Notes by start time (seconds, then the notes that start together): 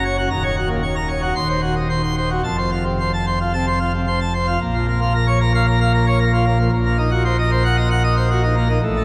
Already playing: F#1 F#2
0.05 C#5
0.18 F#4
0.30 D#1 D#2 A#5
0.43 C#5
0.57 F#4
0.69 A#2
0.82 C#5
0.96 A#5
1.09 C#5
1.22 F#4
1.36 D#1 D#2 C6
1.49 C5
1.62 F#4
1.75 D#3
1.89 C5
2.03 C6
2.17 C5
2.30 F#4
2.44 F1 F2 A5
2.58 C5
2.72 F4
2.85 C3
3.00 C5
3.13 A5
3.27 C5
3.40 F4
3.53 C3 A5
3.67 C5
3.80 F4
3.94 C3
4.07 C5
4.21 A5
4.34 C5
4.47 F4
4.61 A#1 A#2
4.74 F3
4.88 A#3
5.01 F4
5.15 A#4
5.27 C#5
5.41 A#4
5.55 F5
5.68 A#4
5.81 F5
5.94 A#4
6.07 C#5
6.20 A#4
6.33 F4
6.46 A#3
6.59 F3
6.72 A#1 A#2
6.86 A#3
6.98 D#4
7.11 F#4
7.25 C5
7.39 D#5
7.52 C5
7.64 F#5
7.77 D#5
7.90 F#5
8.04 D#5
8.17 C5
8.30 F#4
8.43 D#4
8.56 A#3
8.69 D#4
8.83 A1 A2
8.96 A3